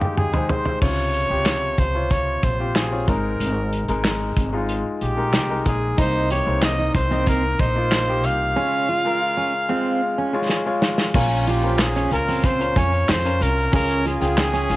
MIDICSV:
0, 0, Header, 1, 6, 480
1, 0, Start_track
1, 0, Tempo, 645161
1, 608, Time_signature, 4, 2, 24, 8
1, 10984, End_track
2, 0, Start_track
2, 0, Title_t, "Trumpet"
2, 0, Program_c, 0, 56
2, 0, Note_on_c, 0, 67, 74
2, 128, Note_off_c, 0, 67, 0
2, 133, Note_on_c, 0, 68, 80
2, 372, Note_on_c, 0, 72, 80
2, 384, Note_off_c, 0, 68, 0
2, 605, Note_off_c, 0, 72, 0
2, 609, Note_on_c, 0, 73, 112
2, 1334, Note_on_c, 0, 72, 89
2, 1346, Note_off_c, 0, 73, 0
2, 1577, Note_on_c, 0, 73, 96
2, 1589, Note_off_c, 0, 72, 0
2, 1818, Note_on_c, 0, 72, 84
2, 1829, Note_off_c, 0, 73, 0
2, 2056, Note_on_c, 0, 68, 74
2, 2068, Note_off_c, 0, 72, 0
2, 2301, Note_on_c, 0, 70, 77
2, 2312, Note_off_c, 0, 68, 0
2, 3016, Note_off_c, 0, 70, 0
2, 3741, Note_on_c, 0, 67, 79
2, 4187, Note_off_c, 0, 67, 0
2, 4224, Note_on_c, 0, 68, 77
2, 4441, Note_off_c, 0, 68, 0
2, 4465, Note_on_c, 0, 72, 96
2, 4682, Note_off_c, 0, 72, 0
2, 4700, Note_on_c, 0, 73, 88
2, 4920, Note_off_c, 0, 73, 0
2, 4942, Note_on_c, 0, 75, 89
2, 5161, Note_off_c, 0, 75, 0
2, 5178, Note_on_c, 0, 72, 91
2, 5398, Note_off_c, 0, 72, 0
2, 5423, Note_on_c, 0, 70, 94
2, 5657, Note_on_c, 0, 72, 98
2, 5668, Note_off_c, 0, 70, 0
2, 6142, Note_on_c, 0, 77, 115
2, 6153, Note_off_c, 0, 72, 0
2, 8058, Note_off_c, 0, 77, 0
2, 8544, Note_on_c, 0, 67, 78
2, 8787, Note_on_c, 0, 68, 89
2, 8799, Note_off_c, 0, 67, 0
2, 9020, Note_off_c, 0, 68, 0
2, 9030, Note_on_c, 0, 70, 98
2, 9268, Note_on_c, 0, 72, 104
2, 9280, Note_off_c, 0, 70, 0
2, 9513, Note_on_c, 0, 73, 103
2, 9524, Note_off_c, 0, 72, 0
2, 9758, Note_on_c, 0, 72, 96
2, 9769, Note_off_c, 0, 73, 0
2, 9989, Note_on_c, 0, 70, 95
2, 10000, Note_off_c, 0, 72, 0
2, 10221, Note_off_c, 0, 70, 0
2, 10234, Note_on_c, 0, 70, 111
2, 10447, Note_off_c, 0, 70, 0
2, 10472, Note_on_c, 0, 68, 101
2, 10984, Note_off_c, 0, 68, 0
2, 10984, End_track
3, 0, Start_track
3, 0, Title_t, "Grand piano"
3, 0, Program_c, 1, 0
3, 0, Control_c, 1, 64, 127
3, 0, Note_on_c, 1, 56, 70
3, 0, Note_on_c, 1, 63, 63
3, 0, Note_on_c, 1, 67, 77
3, 0, Note_on_c, 1, 75, 81
3, 0, Note_on_c, 1, 77, 61
3, 10, Note_on_c, 1, 79, 60
3, 120, Note_off_c, 1, 79, 0
3, 128, Note_on_c, 1, 80, 59
3, 169, Note_off_c, 1, 56, 0
3, 173, Note_off_c, 1, 63, 0
3, 176, Note_off_c, 1, 67, 0
3, 239, Note_off_c, 1, 80, 0
3, 242, Note_on_c, 1, 56, 70
3, 246, Note_on_c, 1, 63, 69
3, 248, Note_on_c, 1, 84, 54
3, 255, Note_on_c, 1, 72, 79
3, 529, Note_off_c, 1, 56, 0
3, 531, Note_off_c, 1, 63, 0
3, 536, Note_off_c, 1, 72, 0
3, 583, Note_off_c, 1, 84, 0
3, 607, Note_on_c, 1, 48, 65
3, 613, Note_on_c, 1, 49, 58
3, 613, Note_on_c, 1, 65, 57
3, 617, Note_on_c, 1, 73, 64
3, 619, Control_c, 1, 64, 0
3, 623, Note_off_c, 1, 75, 0
3, 625, Note_off_c, 1, 77, 0
3, 754, Control_c, 1, 64, 127
3, 892, Note_off_c, 1, 48, 0
3, 895, Note_off_c, 1, 65, 0
3, 897, Note_off_c, 1, 73, 0
3, 964, Note_on_c, 1, 48, 63
3, 971, Note_on_c, 1, 65, 57
3, 975, Note_on_c, 1, 67, 67
3, 1301, Note_off_c, 1, 49, 0
3, 1345, Note_off_c, 1, 48, 0
3, 1349, Note_off_c, 1, 65, 0
3, 1351, Note_off_c, 1, 67, 0
3, 1450, Note_on_c, 1, 48, 57
3, 1453, Note_on_c, 1, 65, 58
3, 1460, Note_on_c, 1, 73, 70
3, 1829, Note_off_c, 1, 48, 0
3, 1830, Note_off_c, 1, 65, 0
3, 1834, Note_off_c, 1, 73, 0
3, 1929, Note_on_c, 1, 60, 66
3, 1933, Note_on_c, 1, 65, 60
3, 1939, Note_on_c, 1, 67, 70
3, 2119, Note_off_c, 1, 60, 0
3, 2121, Note_off_c, 1, 65, 0
3, 2124, Note_off_c, 1, 67, 0
3, 2166, Note_on_c, 1, 60, 65
3, 2172, Note_on_c, 1, 65, 62
3, 2175, Note_on_c, 1, 73, 69
3, 2286, Note_on_c, 1, 56, 73
3, 2288, Note_off_c, 1, 60, 0
3, 2291, Note_off_c, 1, 65, 0
3, 2292, Note_off_c, 1, 73, 0
3, 2292, Note_on_c, 1, 44, 59
3, 2292, Note_on_c, 1, 63, 62
3, 2296, Note_on_c, 1, 70, 77
3, 2297, Control_c, 1, 64, 0
3, 2441, Control_c, 1, 64, 127
3, 2768, Note_off_c, 1, 56, 0
3, 2771, Note_off_c, 1, 63, 0
3, 2773, Note_off_c, 1, 70, 0
3, 2889, Note_on_c, 1, 56, 74
3, 2893, Note_on_c, 1, 63, 68
3, 2899, Note_on_c, 1, 70, 87
3, 2982, Note_off_c, 1, 44, 0
3, 3269, Note_off_c, 1, 56, 0
3, 3271, Note_off_c, 1, 63, 0
3, 3274, Note_off_c, 1, 70, 0
3, 3367, Note_on_c, 1, 56, 76
3, 3372, Note_on_c, 1, 63, 66
3, 3378, Note_on_c, 1, 65, 75
3, 3748, Note_off_c, 1, 56, 0
3, 3750, Note_off_c, 1, 63, 0
3, 3754, Note_off_c, 1, 65, 0
3, 3845, Note_on_c, 1, 56, 70
3, 3849, Note_on_c, 1, 63, 64
3, 3854, Note_on_c, 1, 70, 79
3, 4038, Note_off_c, 1, 56, 0
3, 4040, Note_off_c, 1, 63, 0
3, 4042, Note_off_c, 1, 70, 0
3, 4084, Note_on_c, 1, 56, 71
3, 4091, Note_on_c, 1, 63, 64
3, 4096, Note_on_c, 1, 70, 72
3, 4372, Note_off_c, 1, 56, 0
3, 4375, Note_off_c, 1, 63, 0
3, 4378, Note_off_c, 1, 70, 0
3, 4445, Note_on_c, 1, 58, 68
3, 4450, Note_on_c, 1, 48, 61
3, 4450, Note_on_c, 1, 63, 63
3, 4457, Note_on_c, 1, 72, 69
3, 4460, Control_c, 1, 64, 0
3, 4582, Control_c, 1, 64, 127
3, 4733, Note_off_c, 1, 58, 0
3, 4735, Note_off_c, 1, 63, 0
3, 4739, Note_off_c, 1, 72, 0
3, 4806, Note_on_c, 1, 58, 68
3, 4809, Note_on_c, 1, 63, 63
3, 4816, Note_on_c, 1, 72, 75
3, 5142, Note_off_c, 1, 48, 0
3, 5188, Note_off_c, 1, 58, 0
3, 5190, Note_off_c, 1, 63, 0
3, 5193, Note_off_c, 1, 72, 0
3, 5288, Note_on_c, 1, 58, 64
3, 5291, Note_on_c, 1, 63, 57
3, 5296, Note_on_c, 1, 75, 72
3, 5669, Note_off_c, 1, 58, 0
3, 5671, Note_off_c, 1, 63, 0
3, 5673, Note_off_c, 1, 75, 0
3, 5770, Note_on_c, 1, 58, 72
3, 5774, Note_on_c, 1, 63, 64
3, 5781, Note_on_c, 1, 65, 75
3, 5961, Note_off_c, 1, 58, 0
3, 5963, Note_off_c, 1, 63, 0
3, 5966, Note_off_c, 1, 65, 0
3, 6009, Note_on_c, 1, 58, 68
3, 6015, Note_on_c, 1, 63, 64
3, 6019, Note_on_c, 1, 67, 80
3, 6295, Note_off_c, 1, 58, 0
3, 6298, Note_off_c, 1, 63, 0
3, 6300, Note_off_c, 1, 67, 0
3, 6366, Note_on_c, 1, 56, 73
3, 6371, Note_on_c, 1, 65, 65
3, 6372, Note_on_c, 1, 49, 64
3, 6378, Note_on_c, 1, 73, 74
3, 6381, Control_c, 1, 64, 0
3, 6530, Control_c, 1, 64, 127
3, 6654, Note_off_c, 1, 56, 0
3, 6656, Note_off_c, 1, 65, 0
3, 6660, Note_off_c, 1, 73, 0
3, 6730, Note_on_c, 1, 56, 80
3, 6735, Note_on_c, 1, 65, 74
3, 6740, Note_on_c, 1, 70, 91
3, 7063, Note_off_c, 1, 49, 0
3, 7110, Note_off_c, 1, 56, 0
3, 7113, Note_off_c, 1, 65, 0
3, 7115, Note_off_c, 1, 70, 0
3, 7208, Note_on_c, 1, 56, 83
3, 7213, Note_on_c, 1, 65, 71
3, 7217, Note_on_c, 1, 77, 85
3, 7589, Note_off_c, 1, 56, 0
3, 7592, Note_off_c, 1, 65, 0
3, 7594, Note_off_c, 1, 77, 0
3, 7687, Note_on_c, 1, 56, 90
3, 7693, Note_on_c, 1, 65, 82
3, 7698, Note_on_c, 1, 73, 97
3, 7814, Note_on_c, 1, 80, 65
3, 7879, Note_off_c, 1, 56, 0
3, 7882, Note_off_c, 1, 65, 0
3, 7885, Note_off_c, 1, 73, 0
3, 7925, Note_off_c, 1, 80, 0
3, 7930, Note_on_c, 1, 56, 89
3, 7936, Note_on_c, 1, 65, 78
3, 7936, Note_on_c, 1, 77, 66
3, 7940, Note_on_c, 1, 73, 94
3, 8216, Note_off_c, 1, 56, 0
3, 8219, Note_off_c, 1, 65, 0
3, 8221, Note_off_c, 1, 73, 0
3, 8269, Note_off_c, 1, 77, 0
3, 8291, Note_on_c, 1, 61, 82
3, 8293, Note_on_c, 1, 65, 79
3, 8296, Note_on_c, 1, 46, 74
3, 8298, Note_on_c, 1, 70, 81
3, 8302, Note_on_c, 1, 77, 96
3, 8303, Control_c, 1, 64, 0
3, 8422, Control_c, 1, 64, 127
3, 8576, Note_off_c, 1, 61, 0
3, 8578, Note_off_c, 1, 65, 0
3, 8580, Note_off_c, 1, 70, 0
3, 8582, Note_off_c, 1, 77, 0
3, 8650, Note_on_c, 1, 61, 69
3, 8652, Note_on_c, 1, 65, 66
3, 8657, Note_on_c, 1, 70, 66
3, 8661, Note_on_c, 1, 72, 74
3, 8936, Note_off_c, 1, 61, 0
3, 8937, Note_off_c, 1, 65, 0
3, 8939, Note_off_c, 1, 70, 0
3, 8941, Note_off_c, 1, 72, 0
3, 8985, Note_off_c, 1, 46, 0
3, 9010, Note_on_c, 1, 61, 72
3, 9013, Note_on_c, 1, 65, 68
3, 9016, Note_on_c, 1, 70, 64
3, 9020, Note_on_c, 1, 80, 80
3, 9296, Note_off_c, 1, 61, 0
3, 9297, Note_off_c, 1, 65, 0
3, 9299, Note_off_c, 1, 70, 0
3, 9301, Note_off_c, 1, 80, 0
3, 9368, Note_on_c, 1, 61, 69
3, 9372, Note_on_c, 1, 65, 61
3, 9374, Note_on_c, 1, 70, 61
3, 9379, Note_on_c, 1, 73, 69
3, 9750, Note_off_c, 1, 61, 0
3, 9751, Note_off_c, 1, 65, 0
3, 9753, Note_off_c, 1, 70, 0
3, 9755, Note_off_c, 1, 73, 0
3, 9852, Note_on_c, 1, 61, 75
3, 9855, Note_on_c, 1, 65, 62
3, 9859, Note_on_c, 1, 70, 67
3, 9861, Note_on_c, 1, 73, 80
3, 10137, Note_off_c, 1, 61, 0
3, 10138, Note_off_c, 1, 65, 0
3, 10140, Note_off_c, 1, 70, 0
3, 10142, Note_off_c, 1, 73, 0
3, 10205, Note_on_c, 1, 61, 77
3, 10211, Note_on_c, 1, 49, 62
3, 10211, Note_on_c, 1, 65, 65
3, 10212, Note_on_c, 1, 68, 69
3, 10216, Note_on_c, 1, 77, 77
3, 10224, Control_c, 1, 64, 0
3, 10348, Control_c, 1, 64, 127
3, 10493, Note_off_c, 1, 61, 0
3, 10496, Note_off_c, 1, 65, 0
3, 10497, Note_off_c, 1, 68, 0
3, 10499, Note_off_c, 1, 77, 0
3, 10567, Note_on_c, 1, 61, 73
3, 10568, Note_on_c, 1, 65, 65
3, 10574, Note_on_c, 1, 68, 68
3, 10575, Note_on_c, 1, 79, 80
3, 10854, Note_off_c, 1, 61, 0
3, 10855, Note_off_c, 1, 65, 0
3, 10858, Note_off_c, 1, 68, 0
3, 10858, Note_off_c, 1, 79, 0
3, 10902, Note_off_c, 1, 49, 0
3, 10930, Note_on_c, 1, 61, 74
3, 10932, Note_on_c, 1, 65, 66
3, 10937, Note_on_c, 1, 68, 65
3, 10939, Note_on_c, 1, 77, 77
3, 10984, Note_off_c, 1, 61, 0
3, 10984, Note_off_c, 1, 65, 0
3, 10984, Note_off_c, 1, 68, 0
3, 10984, Note_off_c, 1, 77, 0
3, 10984, End_track
4, 0, Start_track
4, 0, Title_t, "Steel-string acoustic guitar"
4, 0, Program_c, 2, 25
4, 4449, Note_on_c, 2, 63, 88
4, 4678, Note_off_c, 2, 63, 0
4, 4695, Note_on_c, 2, 67, 74
4, 4921, Note_off_c, 2, 67, 0
4, 5052, Note_on_c, 2, 63, 66
4, 5166, Note_off_c, 2, 63, 0
4, 5290, Note_on_c, 2, 60, 74
4, 5519, Note_off_c, 2, 60, 0
4, 5653, Note_on_c, 2, 63, 67
4, 5767, Note_off_c, 2, 63, 0
4, 6370, Note_on_c, 2, 61, 88
4, 6600, Note_off_c, 2, 61, 0
4, 6611, Note_on_c, 2, 65, 72
4, 6840, Note_off_c, 2, 65, 0
4, 6971, Note_on_c, 2, 61, 69
4, 7086, Note_off_c, 2, 61, 0
4, 7210, Note_on_c, 2, 60, 79
4, 7439, Note_off_c, 2, 60, 0
4, 7574, Note_on_c, 2, 61, 70
4, 7688, Note_off_c, 2, 61, 0
4, 8296, Note_on_c, 2, 61, 92
4, 8523, Note_off_c, 2, 61, 0
4, 8537, Note_on_c, 2, 65, 76
4, 8763, Note_off_c, 2, 65, 0
4, 8898, Note_on_c, 2, 61, 72
4, 9010, Note_off_c, 2, 61, 0
4, 9138, Note_on_c, 2, 60, 75
4, 9364, Note_off_c, 2, 60, 0
4, 9497, Note_on_c, 2, 61, 75
4, 9609, Note_off_c, 2, 61, 0
4, 10217, Note_on_c, 2, 61, 96
4, 10443, Note_off_c, 2, 61, 0
4, 10456, Note_on_c, 2, 65, 75
4, 10683, Note_off_c, 2, 65, 0
4, 10813, Note_on_c, 2, 61, 75
4, 10927, Note_off_c, 2, 61, 0
4, 10984, End_track
5, 0, Start_track
5, 0, Title_t, "Upright bass"
5, 0, Program_c, 3, 32
5, 0, Note_on_c, 3, 39, 74
5, 337, Note_off_c, 3, 39, 0
5, 607, Note_on_c, 3, 37, 86
5, 942, Note_off_c, 3, 37, 0
5, 968, Note_on_c, 3, 37, 80
5, 1303, Note_off_c, 3, 37, 0
5, 1328, Note_on_c, 3, 37, 75
5, 1779, Note_off_c, 3, 37, 0
5, 1810, Note_on_c, 3, 34, 78
5, 2260, Note_off_c, 3, 34, 0
5, 2291, Note_on_c, 3, 32, 87
5, 2514, Note_off_c, 3, 32, 0
5, 2531, Note_on_c, 3, 32, 86
5, 2866, Note_off_c, 3, 32, 0
5, 2892, Note_on_c, 3, 32, 77
5, 3226, Note_off_c, 3, 32, 0
5, 3248, Note_on_c, 3, 32, 89
5, 3584, Note_off_c, 3, 32, 0
5, 3731, Note_on_c, 3, 34, 79
5, 3970, Note_off_c, 3, 34, 0
5, 3970, Note_on_c, 3, 36, 85
5, 4194, Note_off_c, 3, 36, 0
5, 4208, Note_on_c, 3, 34, 83
5, 4433, Note_off_c, 3, 34, 0
5, 4451, Note_on_c, 3, 36, 83
5, 4786, Note_off_c, 3, 36, 0
5, 4810, Note_on_c, 3, 36, 88
5, 5146, Note_off_c, 3, 36, 0
5, 5169, Note_on_c, 3, 36, 86
5, 5621, Note_off_c, 3, 36, 0
5, 5651, Note_on_c, 3, 34, 84
5, 6130, Note_off_c, 3, 34, 0
5, 6130, Note_on_c, 3, 36, 81
5, 6354, Note_off_c, 3, 36, 0
5, 8292, Note_on_c, 3, 34, 95
5, 8983, Note_off_c, 3, 34, 0
5, 9014, Note_on_c, 3, 37, 81
5, 9464, Note_off_c, 3, 37, 0
5, 9494, Note_on_c, 3, 41, 87
5, 9717, Note_off_c, 3, 41, 0
5, 9736, Note_on_c, 3, 41, 97
5, 9958, Note_off_c, 3, 41, 0
5, 9977, Note_on_c, 3, 36, 92
5, 10198, Note_off_c, 3, 36, 0
5, 10217, Note_on_c, 3, 37, 96
5, 10550, Note_off_c, 3, 37, 0
5, 10578, Note_on_c, 3, 37, 93
5, 10910, Note_off_c, 3, 37, 0
5, 10936, Note_on_c, 3, 32, 87
5, 10984, Note_off_c, 3, 32, 0
5, 10984, End_track
6, 0, Start_track
6, 0, Title_t, "Drums"
6, 11, Note_on_c, 9, 45, 64
6, 85, Note_off_c, 9, 45, 0
6, 130, Note_on_c, 9, 45, 78
6, 204, Note_off_c, 9, 45, 0
6, 249, Note_on_c, 9, 43, 73
6, 323, Note_off_c, 9, 43, 0
6, 367, Note_on_c, 9, 43, 89
6, 441, Note_off_c, 9, 43, 0
6, 487, Note_on_c, 9, 43, 67
6, 561, Note_off_c, 9, 43, 0
6, 606, Note_on_c, 9, 49, 78
6, 608, Note_on_c, 9, 36, 93
6, 680, Note_off_c, 9, 49, 0
6, 683, Note_off_c, 9, 36, 0
6, 847, Note_on_c, 9, 42, 64
6, 922, Note_off_c, 9, 42, 0
6, 1085, Note_on_c, 9, 42, 73
6, 1087, Note_on_c, 9, 38, 104
6, 1087, Note_on_c, 9, 39, 80
6, 1160, Note_off_c, 9, 42, 0
6, 1161, Note_off_c, 9, 38, 0
6, 1162, Note_off_c, 9, 39, 0
6, 1326, Note_on_c, 9, 42, 62
6, 1328, Note_on_c, 9, 36, 78
6, 1400, Note_off_c, 9, 42, 0
6, 1402, Note_off_c, 9, 36, 0
6, 1565, Note_on_c, 9, 42, 71
6, 1569, Note_on_c, 9, 36, 76
6, 1640, Note_off_c, 9, 42, 0
6, 1644, Note_off_c, 9, 36, 0
6, 1809, Note_on_c, 9, 42, 57
6, 1810, Note_on_c, 9, 36, 77
6, 1883, Note_off_c, 9, 42, 0
6, 1885, Note_off_c, 9, 36, 0
6, 2051, Note_on_c, 9, 42, 81
6, 2052, Note_on_c, 9, 38, 100
6, 2052, Note_on_c, 9, 39, 76
6, 2125, Note_off_c, 9, 42, 0
6, 2126, Note_off_c, 9, 38, 0
6, 2127, Note_off_c, 9, 39, 0
6, 2290, Note_on_c, 9, 42, 68
6, 2291, Note_on_c, 9, 36, 96
6, 2364, Note_off_c, 9, 42, 0
6, 2365, Note_off_c, 9, 36, 0
6, 2533, Note_on_c, 9, 42, 80
6, 2607, Note_off_c, 9, 42, 0
6, 2773, Note_on_c, 9, 42, 65
6, 2847, Note_off_c, 9, 42, 0
6, 2890, Note_on_c, 9, 42, 53
6, 2965, Note_off_c, 9, 42, 0
6, 3009, Note_on_c, 9, 42, 78
6, 3010, Note_on_c, 9, 38, 113
6, 3011, Note_on_c, 9, 39, 86
6, 3084, Note_off_c, 9, 42, 0
6, 3085, Note_off_c, 9, 38, 0
6, 3085, Note_off_c, 9, 39, 0
6, 3246, Note_on_c, 9, 42, 71
6, 3248, Note_on_c, 9, 36, 79
6, 3320, Note_off_c, 9, 42, 0
6, 3323, Note_off_c, 9, 36, 0
6, 3487, Note_on_c, 9, 42, 76
6, 3561, Note_off_c, 9, 42, 0
6, 3728, Note_on_c, 9, 42, 57
6, 3803, Note_off_c, 9, 42, 0
6, 3968, Note_on_c, 9, 42, 83
6, 3969, Note_on_c, 9, 38, 97
6, 3970, Note_on_c, 9, 39, 78
6, 4043, Note_off_c, 9, 38, 0
6, 4043, Note_off_c, 9, 42, 0
6, 4044, Note_off_c, 9, 39, 0
6, 4206, Note_on_c, 9, 42, 68
6, 4210, Note_on_c, 9, 36, 78
6, 4281, Note_off_c, 9, 42, 0
6, 4284, Note_off_c, 9, 36, 0
6, 4449, Note_on_c, 9, 42, 83
6, 4450, Note_on_c, 9, 36, 102
6, 4524, Note_off_c, 9, 36, 0
6, 4524, Note_off_c, 9, 42, 0
6, 4689, Note_on_c, 9, 42, 71
6, 4763, Note_off_c, 9, 42, 0
6, 4927, Note_on_c, 9, 42, 79
6, 4928, Note_on_c, 9, 38, 109
6, 4929, Note_on_c, 9, 39, 86
6, 5002, Note_off_c, 9, 42, 0
6, 5003, Note_off_c, 9, 38, 0
6, 5003, Note_off_c, 9, 39, 0
6, 5168, Note_on_c, 9, 42, 69
6, 5169, Note_on_c, 9, 36, 85
6, 5243, Note_off_c, 9, 36, 0
6, 5243, Note_off_c, 9, 42, 0
6, 5291, Note_on_c, 9, 42, 45
6, 5365, Note_off_c, 9, 42, 0
6, 5405, Note_on_c, 9, 42, 82
6, 5410, Note_on_c, 9, 36, 82
6, 5480, Note_off_c, 9, 42, 0
6, 5484, Note_off_c, 9, 36, 0
6, 5647, Note_on_c, 9, 42, 58
6, 5650, Note_on_c, 9, 36, 82
6, 5722, Note_off_c, 9, 42, 0
6, 5725, Note_off_c, 9, 36, 0
6, 5890, Note_on_c, 9, 42, 83
6, 5891, Note_on_c, 9, 38, 96
6, 5891, Note_on_c, 9, 39, 82
6, 5965, Note_off_c, 9, 38, 0
6, 5965, Note_off_c, 9, 42, 0
6, 5966, Note_off_c, 9, 39, 0
6, 6129, Note_on_c, 9, 42, 73
6, 6203, Note_off_c, 9, 42, 0
6, 7809, Note_on_c, 9, 38, 58
6, 7884, Note_off_c, 9, 38, 0
6, 8051, Note_on_c, 9, 38, 92
6, 8125, Note_off_c, 9, 38, 0
6, 8169, Note_on_c, 9, 38, 82
6, 8244, Note_off_c, 9, 38, 0
6, 8289, Note_on_c, 9, 49, 99
6, 8292, Note_on_c, 9, 36, 102
6, 8363, Note_off_c, 9, 49, 0
6, 8366, Note_off_c, 9, 36, 0
6, 8528, Note_on_c, 9, 46, 72
6, 8529, Note_on_c, 9, 44, 64
6, 8602, Note_off_c, 9, 46, 0
6, 8603, Note_off_c, 9, 44, 0
6, 8647, Note_on_c, 9, 46, 55
6, 8722, Note_off_c, 9, 46, 0
6, 8770, Note_on_c, 9, 46, 87
6, 8772, Note_on_c, 9, 38, 123
6, 8772, Note_on_c, 9, 39, 97
6, 8772, Note_on_c, 9, 44, 69
6, 8845, Note_off_c, 9, 46, 0
6, 8846, Note_off_c, 9, 38, 0
6, 8847, Note_off_c, 9, 39, 0
6, 8847, Note_off_c, 9, 44, 0
6, 8893, Note_on_c, 9, 46, 36
6, 8895, Note_on_c, 9, 44, 65
6, 8968, Note_off_c, 9, 46, 0
6, 8969, Note_off_c, 9, 44, 0
6, 9011, Note_on_c, 9, 46, 71
6, 9013, Note_on_c, 9, 44, 68
6, 9085, Note_off_c, 9, 46, 0
6, 9088, Note_off_c, 9, 44, 0
6, 9136, Note_on_c, 9, 44, 61
6, 9136, Note_on_c, 9, 46, 49
6, 9210, Note_off_c, 9, 44, 0
6, 9211, Note_off_c, 9, 46, 0
6, 9250, Note_on_c, 9, 46, 84
6, 9254, Note_on_c, 9, 36, 86
6, 9254, Note_on_c, 9, 44, 65
6, 9324, Note_off_c, 9, 46, 0
6, 9328, Note_off_c, 9, 36, 0
6, 9329, Note_off_c, 9, 44, 0
6, 9375, Note_on_c, 9, 44, 67
6, 9450, Note_off_c, 9, 44, 0
6, 9494, Note_on_c, 9, 46, 62
6, 9495, Note_on_c, 9, 36, 86
6, 9496, Note_on_c, 9, 44, 67
6, 9568, Note_off_c, 9, 46, 0
6, 9570, Note_off_c, 9, 36, 0
6, 9571, Note_off_c, 9, 44, 0
6, 9615, Note_on_c, 9, 46, 52
6, 9689, Note_off_c, 9, 46, 0
6, 9738, Note_on_c, 9, 44, 62
6, 9738, Note_on_c, 9, 46, 87
6, 9739, Note_on_c, 9, 38, 110
6, 9739, Note_on_c, 9, 39, 84
6, 9812, Note_off_c, 9, 44, 0
6, 9812, Note_off_c, 9, 46, 0
6, 9813, Note_off_c, 9, 38, 0
6, 9814, Note_off_c, 9, 39, 0
6, 9859, Note_on_c, 9, 44, 69
6, 9933, Note_off_c, 9, 44, 0
6, 9976, Note_on_c, 9, 46, 78
6, 9980, Note_on_c, 9, 44, 67
6, 10050, Note_off_c, 9, 46, 0
6, 10054, Note_off_c, 9, 44, 0
6, 10098, Note_on_c, 9, 46, 51
6, 10172, Note_off_c, 9, 46, 0
6, 10216, Note_on_c, 9, 36, 104
6, 10217, Note_on_c, 9, 44, 65
6, 10218, Note_on_c, 9, 46, 93
6, 10291, Note_off_c, 9, 36, 0
6, 10291, Note_off_c, 9, 44, 0
6, 10292, Note_off_c, 9, 46, 0
6, 10334, Note_on_c, 9, 46, 35
6, 10338, Note_on_c, 9, 44, 67
6, 10408, Note_off_c, 9, 46, 0
6, 10412, Note_off_c, 9, 44, 0
6, 10457, Note_on_c, 9, 46, 74
6, 10458, Note_on_c, 9, 44, 63
6, 10532, Note_off_c, 9, 44, 0
6, 10532, Note_off_c, 9, 46, 0
6, 10575, Note_on_c, 9, 46, 62
6, 10577, Note_on_c, 9, 44, 65
6, 10649, Note_off_c, 9, 46, 0
6, 10652, Note_off_c, 9, 44, 0
6, 10695, Note_on_c, 9, 46, 90
6, 10696, Note_on_c, 9, 38, 119
6, 10697, Note_on_c, 9, 39, 100
6, 10697, Note_on_c, 9, 44, 68
6, 10769, Note_off_c, 9, 46, 0
6, 10771, Note_off_c, 9, 38, 0
6, 10771, Note_off_c, 9, 39, 0
6, 10771, Note_off_c, 9, 44, 0
6, 10815, Note_on_c, 9, 44, 63
6, 10890, Note_off_c, 9, 44, 0
6, 10934, Note_on_c, 9, 46, 76
6, 10937, Note_on_c, 9, 44, 67
6, 10984, Note_off_c, 9, 44, 0
6, 10984, Note_off_c, 9, 46, 0
6, 10984, End_track
0, 0, End_of_file